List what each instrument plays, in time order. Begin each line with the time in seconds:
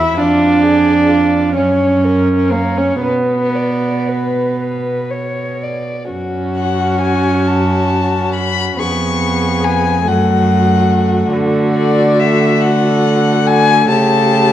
Already playing: cello E2, viola E4, violin E5
0.18 cello F2, viola D4, violin F4 D5
0.63 violin G#4
1.08 violin F4
1.56 cello F#2, viola C#4, violin C#5
2.04 violin A#4
2.52 viola A#3, violin A#4 C#5
2.77 viola C#4, violin C#5
3.02 cello B2, viola B3, violin B4
3.55 violin D5
4.09 violin B4
4.59 violin B4
5.10 violin C#5
5.63 violin D5
6.10 cello F#2, viola C#4, violin F#4
6.56 violin F#5
7.01 violin G#5
7.47 violin A5
8.35 violin B5
8.77 cello F2, viola B3, violin G#4 C#6
9.64 violin G#5
10.05 cello F#2, viola A3, violin F#4 F#5
11.32 cello D3
11.76 violin D5
12.20 violin E5
12.61 violin F#5
13.47 violin G#5
13.88 cello C#3, violin G4 A5